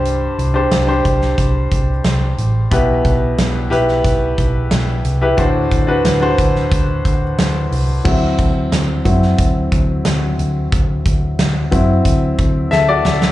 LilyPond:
<<
  \new Staff \with { instrumentName = "Grand piano" } { \time 4/4 \key d \mixolydian \tempo 4 = 90 <d' g' c''>8 r16 <d' g' c''>8 <d' g' c''>4. r4 r16 | <e' g' b'>4~ <e' g' b'>16 r16 <e' g' b'>4. r8. <e' g' b'>16 | <d' fis' c''>8 r16 <d' fis' b'>8 <d' fis' c''>4. r4 r16 | r1 |
r2. <a' e''>16 <fis' d''>8. | }
  \new Staff \with { instrumentName = "Grand piano" } { \time 4/4 \key d \mixolydian g,4 r2. | b,4. r2 r8 | a,4. r2 r8 | <fis c' e'>8 r4 <fis c' e'>8 r2 |
r4. <fis c' e'>8 r2 | }
  \new Staff \with { instrumentName = "Picked electric bass" } { \clef bass \time 4/4 \key d \mixolydian c,8 c,8 c,8 c,8 c,8 c,8 c,8 a,,8 | b,,8 b,,8 b,,8 b,,8 b,,8 b,,8 b,,8 c,8 | d,8 d,8 d,8 d,8 d,8 d,8 d,8 c,8 | d,8 d,8 d,8 fis,8 d,8 d,8 d,8 d,8 |
d,8 d,8 d,8 fis,8 d,8 d,8 d,8 d,8 | }
  \new DrumStaff \with { instrumentName = "Drums" } \drummode { \time 4/4 hh8 hh8 <hh sn>8 <hh bd>16 sn16 <hh bd>8 <hh bd>8 <hh sn>8 hh8 | <hh bd>8 <hh bd>8 <hh sn>8 hh16 sn16 <hh bd>8 <hh bd>8 <hh sn>8 hh8 | <hh bd>8 <hh bd>8 <hh sn>8 <hh bd>16 sn16 <hh bd>8 <hh bd>8 <hh sn>8 hho8 | <cymc bd>8 <hh bd>8 <hh sn>8 <hh bd>16 sn16 <hh bd>8 <hh bd>8 <hh sn>8 hh8 |
<hh bd>8 <hh bd>8 <hh sn>8 <hh bd>8 <hh bd>8 <hh bd>8 sn8 sn16 sn16 | }
>>